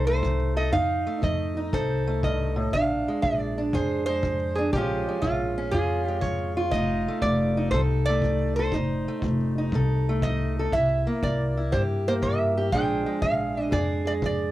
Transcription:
0.00 0.69 C2 medium
0.00 0.20 C3 medium
0.00 0.71 D#4 medium
0.00 0.55 A4 medium
0.07 0.71 A3 medium
0.07 0.53 C5 medium
0.23 0.70 F3 medium
0.23 kick medium
0.56 0.71 A4 medium
0.56 0.72 D#5 medium
0.72 1.19 F2 medium
0.72 1.05 F2 medium
0.72 1.56 D#4 medium
0.72 1.23 F5 medium
0.72 kick medium
1.07 2.06 A3 medium
1.22 1.70 F2 medium
1.22 1.69 F3 medium
1.22 1.75 D#5 medium
1.22 kick medium
1.57 2.71 D#4 medium
1.72 2.69 C2 medium
1.72 2.19 C3 medium
1.72 2.71 A4 medium
1.72 2.20 C5 medium
1.72 kick medium
2.07 2.71 A3 medium
2.23 2.56 G2 medium
2.23 2.73 D#5 medium
2.23 kick medium
2.56 2.72 A2 medium
2.73 3.05 A#1 medium
2.73 3.20 A#2 medium
2.73 3.57 D4 medium
2.73 3.19 F5 medium
2.73 kick medium
3.08 4.07 G#3 soft
3.22 3.70 A#1 medium
3.22 3.70 F3 medium
3.22 3.74 D5 medium
3.22 kick medium
3.58 4.57 D4 medium
3.73 4.20 F2 medium
3.73 4.69 F2 loud
3.73 4.71 G#4 medium
3.73 4.05 C5 medium
3.73 kick medium
4.06 4.73 G#3 medium
4.06 4.58 C5 medium
4.23 4.69 F3 medium
4.23 kick medium
4.55 4.71 D4 medium
4.55 4.72 G#4 medium
4.73 5.05 A#1 medium
4.73 5.20 A#2 medium
4.73 5.22 F3 medium
4.73 5.07 G#3 medium
4.73 5.57 C#4 medium
4.73 5.19 G4 medium
4.73 kick medium
4.78 5.74 F4 medium
5.09 6.07 G#3 soft
5.22 5.70 A#1 medium
5.22 5.69 F3 medium
5.22 5.73 F4 medium
5.22 kick medium
5.58 6.71 C#4 medium
5.71 6.68 F2 medium
5.71 6.19 F2 medium
5.71 6.57 F4 medium
5.71 6.06 G#4 medium
5.71 kick medium
6.06 6.73 G#3 medium
6.06 6.18 G4 medium
6.21 6.69 F3 medium
6.21 6.71 C#5 medium
6.21 kick medium
6.57 7.73 F4 medium
6.71 7.04 F1 medium
6.71 7.20 F2 medium
6.71 7.57 D#4 medium
6.71 7.18 D#5 medium
6.71 kick medium
7.08 8.07 A3 medium
7.22 7.69 F1 medium
7.22 7.69 F3 medium
7.22 7.70 D5 medium
7.22 kick medium
7.57 8.71 D#4 medium
7.71 8.68 C2 medium
7.71 8.19 C3 medium
7.71 8.57 A4 medium
7.71 7.80 C5 medium
7.71 kick medium
8.05 8.72 A3 medium
8.05 8.55 D5 loud
8.22 8.70 F3 medium
8.22 kick medium
8.56 8.72 A4 medium
8.56 10.18 C5 medium
8.72 9.04 F1 medium
8.72 9.20 F2 medium
8.72 9.57 D#4 medium
8.72 kick medium
9.08 10.07 A3 soft
9.22 9.70 F1 medium
9.22 9.70 F3 medium
9.22 kick medium
9.58 10.71 D#4 medium
9.72 10.68 C2 medium
9.72 10.20 C3 medium
9.72 10.57 A4 medium
9.72 kick medium
10.09 10.72 A3 medium
10.22 10.70 F3 medium
10.22 10.69 D#5 medium
10.22 kick medium
10.59 10.72 A4 medium
10.72 11.05 C2 medium
10.72 11.19 C3 medium
10.72 11.56 E4 medium
10.72 11.24 E5 medium
10.72 kick medium
11.07 12.06 A#3 medium
11.23 11.70 C2 medium
11.23 11.69 E3 medium
11.23 11.74 D5 medium
11.23 kick medium
11.57 12.71 E4 soft
11.72 12.19 G2 medium
11.72 12.69 G2 loud
11.72 12.56 G4 medium
11.72 11.81 C5 medium
11.72 kick medium
12.08 12.71 A#3 medium
12.08 12.13 C5 medium
12.22 12.69 E3 medium
12.22 12.74 E5 medium
12.22 kick medium
12.57 12.71 G4 medium
12.72 13.05 A#1 medium
12.72 13.19 A#2 medium
12.72 13.22 F3 medium
12.72 13.05 G#3 medium
12.72 13.56 D4 medium
12.72 13.71 G#4 medium
12.72 13.22 G5 loud
12.72 kick medium
13.06 14.06 G#3 medium
13.22 13.69 A#1 medium
13.22 13.69 F3 medium
13.22 13.74 F5 medium
13.22 kick medium
13.57 14.52 D4 soft
13.71 14.18 F2 medium
13.71 14.52 F2 medium
13.71 14.52 G#4 medium
13.71 14.06 D5 medium
13.71 kick medium
14.07 14.52 G#3 medium
14.07 14.12 D5 loud
14.22 14.52 F3 medium
14.22 14.52 D5 medium
14.22 kick medium

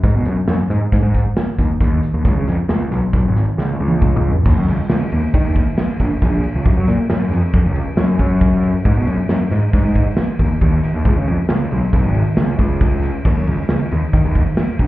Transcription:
0.04 0.12 G#2 loud
0.04 kick loud
0.04 closed hi-hat medium
0.15 0.23 B2 medium
0.25 0.35 F#2 medium
0.25 closed hi-hat medium
0.48 0.56 F#2 medium
0.48 snare loud
0.48 closed hi-hat loud
0.70 0.78 G#2 medium
0.70 closed hi-hat medium
0.92 1.01 G#2 loud
0.92 kick loud
0.92 snare soft
0.92 closed hi-hat loud
1.02 1.19 G#2 medium
1.15 kick medium
1.15 closed hi-hat medium
1.37 snare loud
1.37 closed hi-hat loud
1.59 1.67 D#2 medium
1.59 kick medium
1.59 closed hi-hat medium
1.81 1.98 D#2 medium
1.81 kick loud
1.81 closed hi-hat loud
2.03 closed hi-hat medium
2.14 2.22 D#2 medium
2.25 2.33 C#2 loud
2.25 kick loud
2.25 closed hi-hat loud
2.37 2.45 C#3 medium
2.47 2.56 F2 medium
2.47 snare soft
2.47 closed hi-hat medium
2.69 2.86 C#2 medium
2.69 snare loud
2.69 closed hi-hat loud
2.91 2.99 B1 medium
2.91 snare soft
2.91 closed hi-hat medium
3.13 3.22 B1 medium
3.13 kick loud
3.13 closed hi-hat medium
3.25 3.41 G#1 medium
3.36 snare soft
3.36 closed hi-hat medium
3.58 3.75 C#2 medium
3.58 snare medium
3.80 4.30 C#2 loud
3.88 high tom medium
4.02 kick loud
4.02 mid tom medium
4.16 mid tom loud
4.31 floor tom medium
4.45 4.54 D#2 loud
4.45 kick loud
4.45 crash loud
4.56 4.65 F#2 medium
4.68 4.76 C#2 medium
4.68 snare soft
4.68 ride medium
4.89 4.98 C#2 medium
4.89 snare loud
4.89 ride loud
5.12 5.20 D#2 loud
5.12 ride medium
5.34 5.43 D#3 loud
5.34 kick loud
5.34 ride loud
5.45 5.62 D#2 medium
5.56 kick medium
5.56 ride medium
5.78 snare loud
5.78 ride loud
6.00 6.08 A#1 medium
6.00 kick medium
6.00 snare soft
6.00 ride medium
6.22 6.39 A#1 medium
6.22 kick loud
6.22 snare soft
6.22 ride loud
6.44 ride medium
6.55 6.63 C#2 medium
6.65 6.74 F#2 loud
6.65 kick loud
6.65 ride loud
6.77 6.85 F#3 medium
6.88 6.96 A#2 medium
6.88 snare soft
6.88 ride medium
7.10 7.26 F#2 medium
7.10 snare loud
7.10 ride loud
7.32 7.40 F2 loud
7.32 snare soft
7.32 ride medium
7.54 7.62 F2 medium
7.54 kick loud
7.54 ride medium
7.65 7.81 C#2 medium
7.76 ride medium
7.97 8.14 F#2 medium
7.97 snare loud
7.97 ride loud
8.19 8.70 F#2 loud
8.19 kick medium
8.19 ride medium
8.41 kick loud
8.41 ride loud
8.63 ride medium
8.85 8.94 G#2 loud
8.85 kick loud
8.85 ride loud
8.97 9.05 B2 medium
9.07 9.15 F#2 medium
9.07 ride medium
9.29 9.38 F#2 medium
9.29 snare loud
9.29 ride loud
9.51 9.60 G#2 loud
9.51 snare soft
9.51 ride medium
9.73 9.82 G#2 loud
9.73 kick loud
9.73 snare soft
9.73 ride loud
9.85 10.01 G#2 medium
9.95 kick medium
9.95 ride medium
10.17 snare loud
10.17 ride loud
10.39 10.48 D#2 medium
10.39 kick medium
10.39 ride medium
10.61 10.78 D#2 loud
10.61 kick loud
10.61 ride medium
10.83 snare soft
10.83 ride medium
10.94 11.02 D#2 medium
11.05 11.14 C#2 loud
11.05 kick loud
11.05 ride medium
11.17 11.25 C#3 medium
11.28 11.36 F2 medium
11.28 ride medium
11.49 11.66 C#2 medium
11.49 snare loud
11.49 ride loud
11.71 11.80 B1 medium
11.71 ride medium
11.93 12.02 B1 loud
11.93 kick loud
11.93 snare soft
11.93 ride loud
12.05 12.22 G#1 medium
12.15 ride medium
12.37 12.54 C#2 medium
12.37 snare loud
12.37 ride loud
12.59 13.09 C#2 loud
12.59 kick medium
12.59 ride medium
12.81 kick loud
12.81 snare soft
12.81 ride loud
13.03 snare soft
13.03 ride medium
13.25 13.34 D#2 loud
13.25 kick loud
13.25 crash loud
13.37 13.45 F#2 medium
13.47 13.56 C#2 medium
13.47 ride medium
13.69 13.78 C#2 medium
13.69 snare loud
13.69 ride loud
13.91 14.00 D#2 medium
13.91 ride medium
14.13 14.22 D#3 loud
14.13 kick loud
14.13 snare soft
14.13 ride loud
14.25 14.42 D#2 medium
14.35 kick medium
14.35 snare soft
14.35 ride medium
14.57 snare loud
14.57 ride loud
14.79 14.87 A#1 medium
14.79 kick medium
14.79 ride medium

